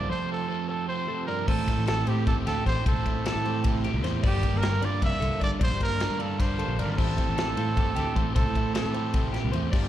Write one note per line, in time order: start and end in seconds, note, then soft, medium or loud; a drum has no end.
0.00 0.10 D5 medium
0.10 0.48 F2 medium
0.10 0.49 C3 medium
0.10 0.32 F3 medium
0.10 0.30 A3 medium
0.10 0.30 C4 medium
0.10 1.47 A4 medium
0.10 0.48 C5 medium
0.10 0.29 C5 loud
0.31 0.49 F3 medium
0.31 0.50 A3 medium
0.31 0.50 C4 medium
0.31 0.68 A4 medium
0.48 0.89 F2 medium
0.48 0.87 C3 medium
0.48 0.69 F3 medium
0.48 0.69 A3 loud
0.48 0.68 C4 loud
0.48 0.69 A4 medium
0.69 0.88 F3 medium
0.69 0.88 A3 medium
0.69 0.89 C4 medium
0.69 0.87 A4 medium
0.69 1.08 C5 medium
0.88 1.27 C3 medium
0.88 1.09 F3 medium
0.88 1.07 A3 medium
0.88 1.06 C4 medium
0.88 1.25 C5 loud
1.08 1.27 F2 medium
1.08 1.28 F3 medium
1.08 1.27 A3 medium
1.08 1.28 C4 medium
1.08 1.28 A4 medium
1.26 1.46 F2 medium
1.26 1.47 G2 medium
1.26 1.47 C3 medium
1.26 1.47 F3 medium
1.26 1.47 A3 medium
1.26 1.47 C4 loud
1.26 1.45 A#4 medium
1.26 1.48 D5 medium
1.47 1.65 A1 loud
1.47 1.88 A2 loud
1.47 1.89 E3 medium
1.47 1.69 A3 loud
1.47 1.68 C4 loud
1.47 1.68 E4 loud
1.47 1.85 A4 loud
1.47 1.87 C5 medium
1.47 kick loud
1.47 crash loud
1.68 1.89 A3 medium
1.68 1.89 C4 medium
1.68 1.89 E4 medium
1.68 kick medium
1.68 snare soft
1.68 ride medium
1.79 2.04 A1 medium
1.87 2.27 A2 medium
1.87 2.27 E3 medium
1.87 2.10 A3 loud
1.87 2.08 C4 medium
1.87 2.08 E4 medium
1.87 2.27 G4 medium
1.87 2.07 A4 medium
1.87 2.10 A4 loud
1.87 snare loud
1.87 ride loud
2.07 2.24 A2 medium
2.07 2.28 A3 medium
2.07 2.28 C4 medium
2.07 2.28 E4 medium
2.07 2.27 G4 medium
2.07 2.46 C5 medium
2.07 ride medium
2.27 2.35 G1 loud
2.27 2.66 E3 medium
2.27 2.48 A3 medium
2.27 2.46 C4 medium
2.27 2.45 E4 medium
2.27 2.47 G4 medium
2.27 2.36 A4 loud
2.27 kick loud
2.27 ride medium
2.46 2.55 D2 loud
2.46 2.84 A2 medium
2.46 2.67 A3 medium
2.46 2.67 C4 medium
2.46 2.67 E4 medium
2.46 2.57 F4 medium
2.46 2.66 G4 medium
2.46 2.65 A4 loud
2.46 snare soft
2.46 ride medium
2.57 2.66 G4 medium
2.66 2.75 A1 medium
2.66 2.85 A2 medium
2.66 2.85 E3 medium
2.66 2.87 A3 loud
2.66 2.86 C4 loud
2.66 2.87 E4 loud
2.66 2.89 G4 medium
2.66 2.84 C5 medium
2.66 2.85 C5 loud
2.66 kick medium
2.66 snare soft
2.66 ride medium
2.86 2.94 C2 loud
2.86 3.25 A2 medium
2.86 3.26 E3 medium
2.86 3.08 A3 loud
2.86 3.06 C4 loud
2.86 3.05 E4 loud
2.86 3.23 A4 loud
2.86 3.25 C5 medium
2.86 kick loud
2.86 ride loud
2.96 3.30 A2 medium
3.06 3.28 A3 medium
3.06 3.28 C4 medium
3.06 3.28 E4 medium
3.06 kick medium
3.06 ride medium
3.26 3.65 A2 medium
3.26 3.65 E3 loud
3.26 3.48 A3 loud
3.26 3.47 C4 medium
3.26 3.46 E4 loud
3.26 3.46 G4 medium
3.26 3.45 A4 medium
3.26 3.81 A4 medium
3.26 snare loud
3.26 ride medium
3.35 3.87 A2 medium
3.45 3.67 A3 medium
3.45 3.66 C4 medium
3.45 3.67 E4 medium
3.45 4.84 G4 medium
3.45 3.84 C5 medium
3.45 ride medium
3.64 3.84 C3 medium
3.64 4.04 E3 medium
3.64 3.88 A3 medium
3.64 3.87 C4 medium
3.64 3.85 E4 loud
3.64 kick loud
3.64 ride loud
3.84 4.04 A#2 medium
3.84 4.05 C4 medium
3.84 4.06 E4 medium
3.84 4.04 G4 medium
3.84 ride medium
3.89 4.06 A3 medium
3.94 4.05 C2 medium
4.04 4.21 E2 loud
4.04 4.23 A2 medium
4.04 4.23 E3 medium
4.04 4.26 A3 loud
4.04 4.24 C4 medium
4.04 4.24 E4 medium
4.04 4.23 C5 medium
4.04 snare soft
4.04 ride medium
4.23 4.40 G1 loud
4.23 4.63 G2 medium
4.23 4.63 D3 loud
4.23 4.46 G3 medium
4.23 4.44 D4 loud
4.23 4.59 G4 loud
4.23 4.62 D5 loud
4.23 kick loud
4.23 crash loud
4.27 4.45 A#3 loud
4.43 4.64 G3 medium
4.43 4.65 A#3 medium
4.43 4.65 D4 medium
4.43 kick medium
4.43 ride medium
4.54 4.79 G1 medium
4.54 4.86 A#4 loud
4.62 5.02 G2 medium
4.62 5.02 D3 medium
4.62 4.86 G3 medium
4.62 4.84 A#3 medium
4.62 4.73 C4 medium
4.62 4.83 D4 loud
4.62 4.81 A#4 medium
4.62 snare loud
4.62 ride loud
4.73 5.02 D4 medium
4.82 4.99 G2 medium
4.82 5.03 A#3 medium
4.82 5.04 D4 medium
4.82 5.21 F4 medium
4.82 5.21 D5 medium
4.82 5.03 D5 loud
4.82 ride medium
4.86 5.03 G3 medium
5.02 5.11 F1 loud
5.02 5.42 D3 medium
5.02 5.24 G3 medium
5.02 5.22 A#3 medium
5.02 5.22 D4 medium
5.02 5.40 E5 loud
5.02 kick medium
5.02 ride medium
5.20 5.30 C2 medium
5.20 5.59 D3 medium
5.20 5.42 A#3 medium
5.20 5.43 D4 medium
5.20 6.18 F4 medium
5.20 5.41 A4 medium
5.20 ride medium
5.25 5.43 G3 medium
5.40 5.50 G1 medium
5.40 5.61 G2 medium
5.40 5.61 D3 medium
5.40 5.62 G3 loud
5.40 5.62 A#3 loud
5.40 5.58 D5 medium
5.40 5.52 D5 loud
5.40 kick medium
5.40 snare soft
5.40 ride medium
5.44 5.63 D4 loud
5.60 5.69 A#1 loud
5.60 5.99 G2 medium
5.60 6.00 D3 medium
5.60 5.82 G3 loud
5.60 5.81 A#3 loud
5.60 5.80 C5 loud
5.60 5.99 D5 medium
5.60 kick loud
5.60 ride loud
5.64 5.80 D4 loud
5.71 6.05 G2 medium
5.81 6.01 G3 medium
5.81 6.01 A#3 medium
5.81 6.01 D4 medium
5.81 6.23 A#4 loud
5.81 kick medium
5.81 ride medium
6.00 6.39 G2 medium
6.00 6.39 D3 medium
6.00 6.22 G3 medium
6.00 6.20 A#3 medium
6.00 6.10 C4 medium
6.00 6.19 D4 loud
6.00 6.19 A#4 medium
6.00 snare loud
6.00 ride medium
6.10 6.61 G2 medium
6.10 6.39 D4 medium
6.19 6.41 G3 medium
6.19 6.41 A#3 medium
6.19 6.41 D4 medium
6.19 6.58 F4 medium
6.19 6.41 A4 medium
6.19 6.59 D5 medium
6.19 ride medium
6.40 6.79 D3 medium
6.40 6.62 G3 medium
6.40 6.60 A#3 medium
6.40 6.59 D4 medium
6.40 6.81 C5 loud
6.40 kick loud
6.40 snare soft
6.40 ride loud
6.59 6.96 D3 medium
6.59 6.79 G3 medium
6.59 6.79 A#3 medium
6.59 6.80 D4 medium
6.59 6.98 F4 medium
6.59 6.78 A4 medium
6.59 ride medium
6.68 6.80 A#1 medium
6.78 6.96 G#1 loud
6.78 6.97 G2 loud
6.78 6.98 D3 medium
6.78 6.99 G3 medium
6.78 6.98 A#3 medium
6.78 6.98 D4 loud
6.78 6.91 A#4 medium
6.78 6.98 D5 medium
6.78 ride medium
6.91 6.99 A#4 medium
6.98 7.15 A1 medium
6.98 7.36 A2 medium
6.98 7.37 E3 loud
6.98 7.18 A3 loud
6.98 7.18 C4 medium
6.98 7.17 E4 loud
6.98 7.38 G4 medium
6.98 8.35 A4 loud
6.98 7.37 C5 medium
6.98 kick loud
6.98 crash loud
7.17 7.37 A3 medium
7.17 7.38 C4 medium
7.17 7.38 E4 medium
7.17 kick medium
7.17 ride medium
7.28 7.54 A1 medium
7.37 7.76 A2 medium
7.37 7.76 E3 medium
7.37 7.58 A3 loud
7.37 7.56 C4 loud
7.37 7.56 E4 loud
7.37 7.57 G4 medium
7.37 7.57 A4 medium
7.37 snare loud
7.37 ride medium
7.56 7.74 A2 medium
7.56 7.77 A3 medium
7.56 7.77 C4 medium
7.56 7.78 E4 medium
7.56 7.69 F4 medium
7.56 7.96 C5 medium
7.56 ride medium
7.69 7.78 G4 medium
7.77 7.85 G1 loud
7.77 8.15 E3 medium
7.77 7.98 A3 medium
7.77 7.97 C4 medium
7.77 7.95 E4 medium
7.77 7.97 G4 medium
7.77 kick loud
7.77 ride medium
7.96 8.06 D2 loud
7.96 8.34 A2 medium
7.96 8.16 A3 medium
7.96 8.16 C4 medium
7.96 8.16 E4 medium
7.96 8.16 G4 medium
7.96 8.17 G4 medium
7.96 ride medium
8.16 8.25 A1 medium
8.16 8.34 A2 medium
8.16 8.34 E3 medium
8.16 8.36 A3 loud
8.16 8.36 C4 loud
8.16 8.36 E4 medium
8.16 8.39 G4 medium
8.16 8.34 C5 medium
8.16 kick medium
8.16 ride medium
8.35 8.44 C2 loud
8.35 8.75 A2 medium
8.35 8.75 E3 medium
8.35 8.58 A3 loud
8.35 8.56 C4 loud
8.35 8.55 E4 loud
8.35 8.72 A4 loud
8.35 8.75 C5 medium
8.35 kick loud
8.35 ride loud
8.46 8.80 A2 medium
8.55 8.77 A3 medium
8.55 8.76 C4 medium
8.55 8.76 E4 medium
8.55 kick medium
8.55 ride medium
8.74 9.15 A2 medium
8.74 9.14 E3 loud
8.74 8.96 A3 loud
8.74 8.94 C4 loud
8.74 8.94 E4 loud
8.74 8.85 F4 medium
8.74 8.94 A4 medium
8.74 9.30 A4 medium
8.74 snare loud
8.74 ride loud
8.85 9.36 A2 medium
8.85 8.94 G4 medium
8.94 9.16 A3 medium
8.94 9.15 C4 medium
8.94 9.16 E4 medium
8.94 9.71 G4 medium
8.94 9.33 C5 medium
8.94 ride medium
9.14 9.33 C3 medium
9.14 9.53 E3 medium
9.14 9.36 A3 medium
9.14 9.35 C4 medium
9.14 9.34 E4 medium
9.14 kick loud
9.14 ride loud
9.33 9.53 A#2 medium
9.33 9.55 A3 medium
9.33 9.54 C4 medium
9.33 9.54 E4 medium
9.33 9.53 G4 medium
9.33 snare soft
9.33 ride medium
9.44 9.55 C2 medium
9.52 9.71 E2 medium
9.52 9.72 A2 medium
9.52 9.72 E3 medium
9.52 9.74 A3 medium
9.52 9.73 C4 loud
9.52 9.73 E4 loud
9.52 9.71 C5 medium
9.52 ride medium
9.72 9.88 G1 loud
9.72 9.88 G2 loud
9.72 9.88 D3 loud
9.72 9.88 G3 loud
9.72 9.88 A#3 loud
9.72 9.88 D4 loud
9.72 9.88 F4 medium
9.72 9.88 G4 loud
9.72 9.88 D5 medium
9.72 kick loud
9.72 crash loud